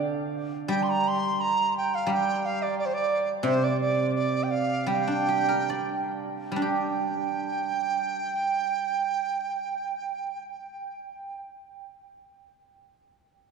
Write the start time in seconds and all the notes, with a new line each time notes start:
Already playing: D3
0.68 G3 G5
0.83 C6
0.89 A#5
1.08 C6
1.41 A#5
1.77 G5
1.95 F5
2.07 G3
2.13 G5
2.46 F5
2.62 D5
2.79 D5
2.86 C5
2.94 D5
3.43 C3 C5
3.64 D5
3.81 D5
4.15 D5
4.43 G5
4.51 F5
4.86 G3 G5
5.07 D4
5.29 G4
5.49 A#4
5.70 D5
6.52 G3
6.56 D4
6.62 G4 G5